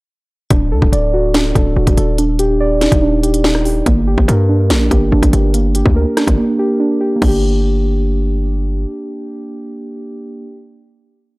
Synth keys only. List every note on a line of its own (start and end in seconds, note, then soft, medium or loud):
0.51 1.33 D4 medium
0.72 1.54 A4 loud
0.93 2.18 D5 medium
1.14 1.75 F#4 medium
1.34 2.17 D4 medium
1.55 1.96 A4 medium
1.76 2.18 F#4 medium
1.98 2.18 A4 medium
2.18 3.01 D4 loud
2.39 3.22 G4 loud
2.60 3.86 D5 medium
2.81 3.43 D#4 medium
3.02 3.86 D4 medium
3.23 3.64 G4 medium
3.44 3.86 D#4 medium
3.65 3.86 G4 medium
3.86 4.69 A#3 medium
4.07 4.90 G4 medium
4.28 5.54 A#4 medium
4.49 5.11 D4 medium
4.70 5.53 A#3 medium
4.91 5.32 G4 medium
5.12 6.16 D4 medium
5.33 5.74 G4 medium
5.54 6.37 A#3 loud
5.75 6.58 G4 medium
5.96 7.22 A#4 medium
6.17 6.79 D4 medium
6.38 7.15 A#3 medium
6.59 6.99 G4 medium
6.80 7.21 D4 medium
7.01 7.22 G4 medium
7.16 10.44 A#3 medium
7.22 10.50 D4 medium
7.28 10.56 G4 medium